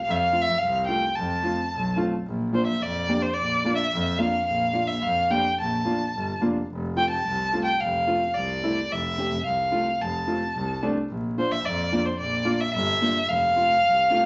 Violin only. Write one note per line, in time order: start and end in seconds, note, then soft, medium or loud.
0.03 0.12 F5 medium
0.11 0.17 E5 medium
0.16 0.43 F5 medium
0.42 0.59 E5 loud
0.58 0.86 F5 medium
0.87 1.17 G5 medium
1.15 1.99 A5 medium
2.54 2.66 C5 medium
2.67 2.84 E5 medium
2.82 3.23 D5 medium
3.22 3.35 C5 medium
3.33 3.75 D5 medium
3.75 4.19 E5 medium
4.18 4.45 F5 medium
4.46 4.88 F5 medium
4.87 5.04 E5 medium
5.02 5.32 F5 medium
5.31 5.58 G5 medium
5.61 6.38 A5 medium
6.97 7.10 G5 medium
7.10 7.61 A5 medium
7.65 7.82 G5 medium
7.80 8.36 F5 medium
8.34 8.93 D5 medium
8.92 9.45 E5 medium
9.45 10.03 F5 medium
10.01 10.83 A5 medium
11.39 11.53 C5 medium
11.52 11.67 E5 medium
11.66 12.07 D5 medium
12.06 12.19 C5 medium
12.20 12.62 D5 medium
12.60 12.73 E5 medium
12.74 13.30 E5 loud
13.29 14.26 F5 loud